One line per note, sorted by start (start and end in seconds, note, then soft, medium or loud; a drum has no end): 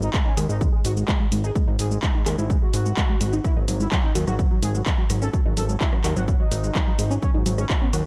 0.02 0.07 G#3 medium
0.02 0.10 D#4 medium
0.02 shaker soft
0.14 0.19 G#3 loud
0.14 0.22 G#3 medium
0.14 kick loud
0.14 clap loud
0.14 shaker soft
0.26 0.33 C#4 medium
0.26 0.31 D#4 medium
0.37 0.47 D#2 medium
0.37 0.45 G#3 medium
0.37 0.40 G#4 loud
0.37 open hi-hat loud
0.37 shaker medium
0.49 0.69 G#1 medium
0.49 0.54 G#3 loud
0.49 0.57 D#4 medium
0.49 shaker soft
0.61 0.66 D#3 loud
0.61 0.69 G#3 medium
0.61 kick loud
0.61 shaker soft
0.73 0.80 G#3 medium
0.84 1.04 G#1 loud
0.84 0.90 G#3 medium
0.84 0.92 F#4 medium
0.84 open hi-hat loud
0.84 shaker medium
0.96 1.02 G#3 medium
0.96 1.04 G#3 medium
0.96 shaker soft
1.08 1.13 G#3 loud
1.08 1.16 G#3 medium
1.08 kick loud
1.08 clap loud
1.08 shaker soft
1.20 1.25 G#3 medium
1.32 1.51 G#1 medium
1.32 1.35 G#3 medium
1.32 1.40 G#3 medium
1.32 open hi-hat loud
1.32 shaker medium
1.44 1.49 D#4 loud
1.44 1.51 G#4 medium
1.44 shaker soft
1.55 1.61 G#3 loud
1.55 1.63 G#3 medium
1.55 kick loud
1.55 shaker soft
1.68 1.77 G#1 loud
1.68 1.75 G#3 medium
1.68 1.71 D#4 loud
1.79 1.99 G#1 medium
1.79 1.84 G#3 medium
1.79 1.87 G#4 medium
1.79 open hi-hat loud
1.79 shaker medium
1.91 1.96 G#3 medium
1.91 1.99 G#3 medium
1.91 shaker soft
2.03 2.08 G#3 loud
2.03 2.10 D#4 loud
2.03 kick loud
2.03 clap loud
2.03 shaker soft
2.15 2.22 G#3 medium
2.15 2.20 D#4 medium
2.26 2.36 D#2 medium
2.26 2.34 G#3 medium
2.26 2.29 G#4 loud
2.26 clap medium
2.26 open hi-hat medium
2.26 shaker medium
2.38 2.58 G#1 medium
2.38 2.43 G#3 loud
2.38 2.46 E4 medium
2.38 shaker soft
2.50 2.55 D#3 loud
2.50 2.58 G#3 medium
2.50 kick loud
2.50 shaker soft
2.62 2.70 G#3 medium
2.62 3.35 F#4 loud
2.74 2.93 G#1 loud
2.74 2.79 G#3 medium
2.74 open hi-hat loud
2.74 shaker medium
2.86 2.91 G#3 medium
2.86 shaker soft
2.97 3.02 G#3 loud
2.97 kick loud
2.97 clap loud
2.97 shaker soft
3.09 3.14 G#3 medium
3.21 3.40 G#1 loud
3.21 3.24 G#3 medium
3.21 open hi-hat loud
3.21 shaker medium
3.33 3.38 D#4 loud
3.33 shaker soft
3.44 3.50 F#3 loud
3.44 3.52 E4 loud
3.44 kick loud
3.44 cross-stick medium
3.44 shaker soft
3.56 3.66 G#1 medium
3.56 3.64 F#3 medium
3.56 3.60 D#4 medium
3.68 3.87 G#1 medium
3.68 3.73 F#3 medium
3.68 3.76 F#3 medium
3.68 open hi-hat loud
3.68 shaker medium
3.80 3.85 G#3 medium
3.80 3.88 E4 medium
3.80 shaker soft
3.92 3.97 F#3 loud
3.92 3.99 F#3 medium
3.92 kick loud
3.92 clap loud
3.92 shaker soft
4.04 4.09 C#4 medium
4.04 4.11 D#4 medium
4.15 4.25 D#2 medium
4.15 4.23 F#3 medium
4.15 4.18 F#4 medium
4.15 open hi-hat medium
4.15 shaker medium
4.27 4.47 G#1 medium
4.27 4.32 F#3 loud
4.27 4.35 F#4 medium
4.27 cross-stick medium
4.27 shaker soft
4.39 4.44 C#3 loud
4.39 4.47 F#3 medium
4.39 kick loud
4.39 shaker soft
4.51 4.59 F#3 medium
4.51 4.58 F#3 medium
4.62 4.82 G#1 loud
4.62 4.68 G#3 medium
4.62 4.70 G#4 medium
4.62 open hi-hat loud
4.62 shaker medium
4.75 4.82 F#3 medium
4.75 4.80 G#3 medium
4.75 shaker soft
4.86 4.91 F#3 loud
4.86 4.94 F#3 medium
4.86 kick loud
4.86 clap loud
4.86 shaker soft
4.98 5.03 F#3 medium
5.10 5.29 G#1 medium
5.10 5.17 F#3 medium
5.10 5.13 G#3 medium
5.10 cross-stick soft
5.10 open hi-hat medium
5.10 shaker medium
5.22 5.27 C#4 loud
5.22 5.29 A4 medium
5.22 shaker soft
5.33 5.39 F#3 loud
5.33 5.41 F#3 medium
5.33 kick loud
5.33 shaker soft
5.45 5.55 G#1 loud
5.45 5.53 F#3 medium
5.45 5.49 D#4 loud
5.57 5.76 G#1 loud
5.57 5.62 F#3 medium
5.57 5.65 A4 medium
5.57 open hi-hat loud
5.57 shaker medium
5.69 5.76 F#3 medium
5.69 5.74 G#3 medium
5.69 shaker soft
5.80 5.86 F#3 loud
5.80 5.88 E4 medium
5.80 kick loud
5.80 clap loud
5.80 shaker soft
5.93 6.00 F#3 medium
5.93 5.98 C#4 medium
5.93 cross-stick medium
6.04 6.14 D#2 medium
6.04 6.12 F#3 medium
6.04 6.07 F#4 loud
6.04 clap medium
6.04 open hi-hat medium
6.04 shaker medium
6.16 6.36 G#1 medium
6.16 6.21 F#3 loud
6.16 6.24 F#4 medium
6.16 shaker soft
6.28 6.33 C#3 loud
6.28 6.35 F#3 medium
6.28 kick loud
6.28 shaker soft
6.40 6.47 F#3 medium
6.40 7.13 D#4 loud
6.51 6.71 G#1 loud
6.51 6.57 G#3 medium
6.51 open hi-hat loud
6.51 shaker medium
6.64 6.69 G#3 medium
6.64 shaker soft
6.75 6.80 F#3 loud
6.75 kick loud
6.75 cross-stick medium
6.75 clap loud
6.75 shaker soft
6.87 6.92 F#3 medium
6.98 7.18 G#1 medium
6.98 7.02 G#3 medium
6.98 open hi-hat medium
6.98 shaker medium
7.11 7.16 C#4 loud
7.11 shaker soft
7.22 7.28 F#3 loud
7.22 7.30 C#4 loud
7.22 kick loud
7.22 shaker soft
7.34 7.44 G#1 loud
7.34 7.42 F#3 medium
7.34 7.37 D#4 loud
7.46 7.65 G#1 medium
7.46 7.54 F#3 medium
7.46 7.51 F#3 medium
7.46 open hi-hat loud
7.46 shaker medium
7.58 7.63 G#3 medium
7.58 7.65 C#4 medium
7.58 cross-stick medium
7.58 shaker soft
7.69 7.77 F#3 medium
7.69 7.75 F#3 loud
7.69 kick loud
7.69 clap loud
7.69 shaker soft
7.82 7.89 B3 medium
7.82 7.87 C#4 medium
7.93 8.03 D#2 medium
7.93 8.01 F#3 medium
7.93 7.96 F#4 loud
7.93 open hi-hat medium
7.93 shaker medium